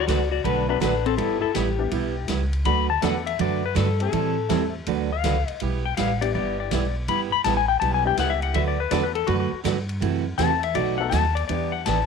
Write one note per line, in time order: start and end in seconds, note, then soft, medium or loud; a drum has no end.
0.07 0.43 C#2 medium
0.07 0.19 D3 medium
0.07 0.19 F#3 medium
0.07 0.20 A3 medium
0.07 0.20 D4 medium
0.07 0.30 F#4 medium
0.07 0.20 F#4 medium
0.07 0.20 B4 medium
0.07 0.31 D5 medium
0.07 snare medium
0.07 hi-hat pedal medium
0.07 ride medium
0.32 0.43 F#4 medium
0.32 0.44 D5 medium
0.44 0.80 B1 medium
0.44 0.67 D3 medium
0.44 0.67 F#3 medium
0.44 0.67 A3 medium
0.44 0.67 D4 medium
0.44 0.67 F#4 medium
0.44 0.68 B4 medium
0.44 0.67 B4 medium
0.44 ride medium
0.68 0.80 F#3 medium
0.68 0.80 A3 medium
0.68 0.80 B3 medium
0.68 0.80 D4 medium
0.68 0.80 F#4 medium
0.68 0.81 B4 medium
0.80 1.17 A1 medium
0.80 0.93 D3 medium
0.80 0.93 F#3 medium
0.80 0.93 A3 medium
0.80 0.93 D4 medium
0.80 1.04 D4 medium
0.80 0.93 F#4 medium
0.80 0.93 B4 medium
0.80 1.05 B4 medium
0.80 snare medium
0.80 hi-hat pedal medium
0.80 ride medium
1.06 1.17 C4 medium
1.06 1.16 A4 medium
1.06 ride soft
1.17 1.41 G1 medium
1.17 1.40 G3 medium
1.17 1.40 B3 medium
1.17 1.40 E4 medium
1.17 1.41 G4 medium
1.17 1.41 A4 medium
1.17 ride medium
1.41 1.53 E4 medium
1.41 1.54 A4 medium
1.41 muted upright bass stroke soft
1.54 1.91 A1 medium
1.54 1.67 G3 medium
1.54 1.67 B3 medium
1.54 1.67 E4 medium
1.54 1.90 G4 medium
1.54 1.67 G4 medium
1.54 snare medium
1.54 hi-hat pedal medium
1.54 ride medium
1.78 2.26 G3 medium
1.78 2.26 B3 medium
1.78 2.26 D4 medium
1.78 2.26 E4 medium
1.78 2.26 G4 medium
1.91 2.28 B1 medium
1.91 2.14 G3 medium
1.91 2.14 B3 medium
1.91 2.14 E4 medium
1.91 2.15 G4 medium
1.91 ride medium
2.28 2.65 C#2 medium
2.28 2.41 G3 medium
2.28 2.41 B3 medium
2.28 2.41 E4 medium
2.28 2.41 G4 medium
2.28 snare medium
2.28 hi-hat pedal medium
2.28 ride medium
2.53 ride soft
2.65 3.02 D2 medium
2.65 2.88 D3 medium
2.65 2.88 F#3 medium
2.65 2.88 A3 medium
2.65 2.88 D4 medium
2.65 2.88 F#4 medium
2.65 2.88 B4 medium
2.65 2.89 B5 loud
2.65 ride medium
2.90 3.02 A5 medium
3.01 3.39 E2 medium
3.01 3.14 D3 medium
3.01 3.14 F#3 medium
3.01 3.24 A3 medium
3.01 3.14 A3 medium
3.01 3.24 B3 medium
3.01 3.24 D4 medium
3.01 3.14 D4 medium
3.01 3.24 F#4 medium
3.01 3.15 F#4 medium
3.01 3.24 A4 medium
3.01 3.15 B4 medium
3.01 3.26 F#5 medium
3.01 snare medium
3.01 hi-hat pedal medium
3.01 ride medium
3.26 3.39 E5 medium
3.26 ride soft
3.39 3.75 F#2 medium
3.39 3.61 D3 medium
3.39 3.62 F#3 medium
3.39 3.62 A3 medium
3.39 3.62 D4 medium
3.39 3.62 F#4 medium
3.39 3.62 B4 medium
3.39 3.64 D5 medium
3.39 ride medium
3.65 3.77 B4 medium
3.75 4.12 G2 medium
3.75 3.87 D3 medium
3.75 3.87 F#3 medium
3.75 3.88 A3 medium
3.75 3.88 D4 medium
3.75 3.88 F#4 medium
3.75 4.01 A4 medium
3.75 3.88 B4 medium
3.75 snare medium
3.75 hi-hat pedal medium
3.75 ride medium
4.00 4.11 A3 medium
4.00 4.11 C4 medium
4.00 4.12 E4 medium
4.00 4.12 G4 medium
4.00 4.12 A4 medium
4.00 4.73 A4 loud
4.00 ride soft
4.12 4.49 A2 medium
4.12 4.35 E3 medium
4.12 4.35 G3 medium
4.12 4.35 C4 medium
4.12 4.35 E4 medium
4.12 4.35 A4 medium
4.12 ride medium
4.49 4.86 E2 medium
4.49 4.61 E3 medium
4.49 4.61 G3 medium
4.49 4.71 A3 medium
4.49 4.71 C4 medium
4.49 4.61 C4 medium
4.49 4.71 E4 medium
4.49 4.62 E4 medium
4.49 4.71 G4 medium
4.49 4.72 A4 medium
4.49 4.62 A4 medium
4.49 snare medium
4.49 hi-hat pedal medium
4.49 ride medium
4.86 5.22 D2 medium
4.86 5.09 D3 medium
4.86 5.09 F#3 medium
4.86 5.09 A3 medium
4.86 5.09 D4 medium
4.86 5.10 F#4 medium
4.86 5.09 B4 medium
4.86 ride medium
5.12 5.49 F5 loud
5.24 5.46 C#2 medium
5.24 5.36 D3 medium
5.24 5.36 F#3 medium
5.24 5.36 A3 medium
5.24 5.36 D4 medium
5.24 5.36 F#4 medium
5.24 5.36 B4 medium
5.24 snare medium
5.24 hi-hat pedal medium
5.24 ride medium
5.48 5.60 D#5 loud
5.48 muted upright bass stroke soft
5.48 ride soft
5.60 5.97 B1 medium
5.60 5.83 G3 medium
5.60 5.83 B3 medium
5.60 5.83 E4 medium
5.60 5.83 G4 medium
5.60 ride medium
5.86 5.97 G5 medium
5.97 6.33 A1 medium
5.97 6.09 G3 medium
5.97 6.09 B3 medium
5.97 6.09 E4 medium
5.97 6.10 G4 medium
5.97 6.21 F5 medium
5.97 snare medium
5.97 hi-hat pedal medium
5.97 ride medium
6.21 6.68 G3 medium
6.21 6.68 B3 medium
6.21 6.68 D4 medium
6.21 6.68 E4 medium
6.21 6.68 G4 medium
6.21 6.33 D5 medium
6.21 ride medium
6.34 6.70 G1 medium
6.34 6.56 G3 medium
6.34 6.57 B3 medium
6.34 6.57 E4 medium
6.34 6.57 G4 medium
6.34 6.58 D5 loud
6.60 6.95 D5 medium
6.71 7.07 B1 medium
6.71 6.83 G3 medium
6.71 6.83 B3 medium
6.71 6.83 E4 medium
6.71 6.83 G4 medium
6.71 snare medium
6.71 hi-hat pedal medium
6.71 ride medium
7.08 7.30 G1 medium
7.08 7.30 G3 medium
7.08 7.30 B3 medium
7.08 7.30 E4 medium
7.08 7.31 G4 medium
7.08 7.20 B5 loud
7.08 ride medium
7.32 7.44 B5 medium
7.32 muted upright bass stroke soft
7.44 7.80 A1 medium
7.44 7.56 G3 medium
7.44 7.57 B3 medium
7.44 7.57 E4 medium
7.44 7.57 G4 medium
7.44 7.56 A5 medium
7.44 snare medium
7.44 hi-hat pedal medium
7.44 ride medium
7.57 7.68 G#5 medium
7.68 7.79 G5 medium
7.80 8.17 B1 medium
7.80 8.03 G3 medium
7.80 8.04 B3 medium
7.80 8.04 E4 medium
7.80 8.04 G4 medium
7.80 7.92 A5 medium
7.80 ride medium
7.94 8.06 G#5 medium
8.05 8.52 G3 medium
8.05 8.52 B3 medium
8.05 8.52 D4 medium
8.05 8.52 E4 medium
8.05 8.52 G4 medium
8.05 8.18 G5 medium
8.17 8.53 C#2 medium
8.17 8.30 G3 medium
8.17 8.30 B3 medium
8.17 8.30 E4 medium
8.17 8.30 G4 medium
8.17 8.31 F#5 medium
8.17 snare medium
8.17 hi-hat pedal medium
8.17 ride medium
8.30 8.42 E5 medium
8.42 8.55 F#5 medium
8.42 ride soft
8.54 8.90 D2 medium
8.54 8.77 D3 medium
8.54 8.77 F#3 medium
8.54 8.77 A3 medium
8.54 8.77 D4 medium
8.54 8.77 F#4 medium
8.54 8.77 B4 medium
8.54 8.67 E5 medium
8.54 ride medium
8.68 8.79 D5 medium
8.80 8.92 B4 medium
8.91 9.27 E2 medium
8.91 9.03 D3 medium
8.91 9.03 F#3 medium
8.91 9.13 A3 medium
8.91 9.03 A3 medium
8.91 9.13 B3 medium
8.91 9.13 D4 medium
8.91 9.03 D4 medium
8.91 9.04 F#4 medium
8.91 9.14 F#4 medium
8.91 9.14 A4 medium
8.91 9.03 B4 medium
8.91 9.03 D5 medium
8.91 snare medium
8.91 hi-hat pedal medium
8.91 ride medium
9.04 9.15 B4 medium
9.15 9.27 A4 medium
9.15 ride soft
9.27 9.51 F#2 medium
9.27 9.50 D3 medium
9.27 9.50 F#3 medium
9.27 9.50 A3 medium
9.27 9.50 D4 medium
9.27 9.39 F#4 medium
9.27 9.50 F#4 medium
9.27 9.50 B4 medium
9.27 ride medium
9.40 9.60 F#4 medium
9.52 muted upright bass stroke soft
9.64 10.01 G2 medium
9.64 9.76 D3 medium
9.64 9.76 F#3 medium
9.64 9.76 A3 medium
9.64 9.76 D4 medium
9.64 9.77 F#4 medium
9.64 9.77 B4 medium
9.64 snare medium
9.64 hi-hat pedal medium
9.64 ride medium
9.89 ride soft
10.00 10.38 F#2 medium
10.00 10.23 C3 medium
10.00 10.24 E3 medium
10.00 10.24 A3 medium
10.00 10.24 E4 medium
10.00 10.24 F#4 medium
10.00 ride medium
10.38 10.74 E2 medium
10.38 10.50 C3 medium
10.38 10.50 E3 medium
10.38 10.60 A3 medium
10.38 10.50 A3 medium
10.38 10.60 C4 medium
10.38 10.60 E4 medium
10.38 10.50 E4 medium
10.38 10.60 F#4 medium
10.38 10.51 F#4 medium
10.38 10.60 A4 medium
10.38 10.62 A5 loud
10.38 snare medium
10.38 hi-hat pedal medium
10.38 ride medium
10.63 10.75 E5 medium
10.63 ride soft
10.74 11.11 B1 medium
10.74 10.97 B2 medium
10.74 10.97 F#3 medium
10.74 10.97 A3 medium
10.74 10.97 D#4 medium
10.74 10.98 F#4 medium
10.74 10.99 D5 medium
10.74 ride medium
10.98 11.11 A3 medium
10.98 11.11 B3 medium
10.98 11.11 D#4 medium
10.98 11.11 F#4 medium
10.98 11.11 A4 medium
10.98 11.11 F#5 medium
11.10 11.48 D#2 medium
11.10 11.23 B2 medium
11.10 11.24 F#3 medium
11.10 11.24 A3 medium
11.10 11.24 D#4 medium
11.10 11.24 F#4 medium
11.10 11.34 A5 medium
11.10 snare medium
11.10 hi-hat pedal medium
11.10 ride medium
11.35 11.46 D5 medium
11.35 ride soft
11.48 11.85 E2 medium
11.48 11.71 E3 medium
11.48 12.06 G3 medium
11.48 11.71 B3 medium
11.48 12.06 B3 soft
11.48 11.72 D4 medium
11.48 12.06 D4 soft
11.48 12.06 E4 medium
11.48 11.72 G4 medium
11.48 12.06 G4 medium
11.48 11.72 D5 medium
11.48 ride medium
11.72 11.85 F#5 medium
11.86 12.06 A1 medium
11.86 11.98 E3 medium
11.86 11.98 B3 medium
11.86 11.98 D4 medium
11.86 11.98 G4 medium
11.86 12.06 A5 medium
11.86 snare medium
11.86 hi-hat pedal medium
11.86 ride medium